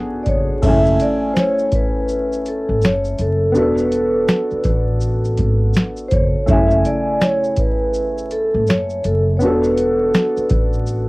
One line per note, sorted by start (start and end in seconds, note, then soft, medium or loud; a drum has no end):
0.00 0.61 B3 medium
0.00 0.62 D4 medium
0.00 0.62 F#4 medium
0.00 0.63 G#4 medium
0.23 0.47 F#1 medium
0.23 0.27 D5 medium
0.23 kick medium
0.23 closed hi-hat medium
0.28 0.61 C#5 medium
0.62 0.97 F#1 loud
0.62 3.51 A3 medium
0.62 3.52 C#4 medium
0.62 1.02 E5 loud
0.62 kick loud
0.62 crash medium
0.62 shaker medium
0.66 3.53 E4 medium
0.66 3.54 G#5 medium
0.86 shaker soft
1.00 1.30 D5 loud
1.00 closed hi-hat medium
1.00 shaker soft
1.33 1.37 C5 medium
1.33 finger snap medium
1.33 snare loud
1.33 shaker medium
1.39 1.68 C#5 loud
1.59 shaker soft
1.69 1.74 C#5 medium
1.69 kick medium
1.69 closed hi-hat medium
1.69 shaker soft
1.75 2.49 B4 medium
2.09 shaker medium
2.33 shaker soft
2.46 2.85 A4 medium
2.46 closed hi-hat medium
2.46 shaker soft
2.69 2.83 A1 medium
2.82 3.16 F#1 medium
2.82 3.21 C#5 medium
2.82 finger snap medium
2.82 snare loud
2.82 shaker medium
3.05 shaker soft
3.18 3.56 F#1 medium
3.18 3.58 A4 medium
3.18 closed hi-hat medium
3.18 shaker soft
3.52 6.42 B3 medium
3.52 6.43 D4 medium
3.52 shaker medium
3.56 4.25 E1 loud
3.56 6.45 F#4 medium
3.56 6.46 A4 medium
3.56 4.99 B4 medium
3.78 shaker soft
3.92 closed hi-hat medium
3.92 shaker medium
4.28 finger snap loud
4.28 snare loud
4.28 shaker medium
4.51 muted upright bass stroke soft
4.51 shaker soft
4.64 5.34 A1 medium
4.64 kick loud
4.64 closed hi-hat medium
4.64 shaker soft
5.01 shaker medium
5.25 shaker soft
5.37 5.72 G#1 medium
5.37 kick medium
5.37 closed hi-hat medium
5.37 shaker soft
5.74 finger snap medium
5.74 snare loud
5.74 shaker medium
5.97 shaker soft
6.08 6.33 F#1 medium
6.08 6.13 C5 medium
6.08 kick medium
6.08 closed hi-hat medium
6.08 shaker soft
6.13 6.50 C#5 medium
6.46 6.82 F#1 loud
6.46 9.37 C#3 medium
6.46 9.36 A3 medium
6.46 6.87 E5 loud
6.46 kick loud
6.46 shaker medium
6.51 9.38 E4 medium
6.51 9.39 G#5 medium
6.71 shaker soft
6.85 7.23 D5 medium
6.85 closed hi-hat medium
6.85 shaker medium
7.21 7.60 C#5 loud
7.21 finger snap loud
7.21 snare loud
7.21 shaker medium
7.44 shaker soft
7.57 8.34 B4 medium
7.57 kick medium
7.57 closed hi-hat medium
7.57 shaker soft
7.94 shaker medium
8.18 shaker soft
8.31 8.69 A4 medium
8.31 closed hi-hat medium
8.31 shaker soft
8.54 8.68 A1 medium
8.67 9.02 F#1 medium
8.67 9.02 C#5 medium
8.67 finger snap loud
8.67 snare loud
8.67 shaker medium
8.90 shaker soft
9.04 9.41 F#1 medium
9.04 9.19 A4 medium
9.04 closed hi-hat medium
9.04 shaker soft
9.37 11.09 B3 medium
9.37 9.42 C#5 medium
9.37 shaker medium
9.41 10.10 E1 loud
9.41 11.09 D4 medium
9.41 11.09 F#4 medium
9.41 10.84 B4 medium
9.46 11.09 A4 medium
9.64 shaker soft
9.77 closed hi-hat medium
9.77 shaker medium
10.14 finger snap medium
10.14 snare loud
10.14 shaker medium
10.37 muted upright bass stroke soft
10.37 shaker soft
10.49 11.09 A1 medium
10.49 kick medium
10.49 closed hi-hat medium
10.49 shaker soft
10.73 shaker soft
10.87 shaker medium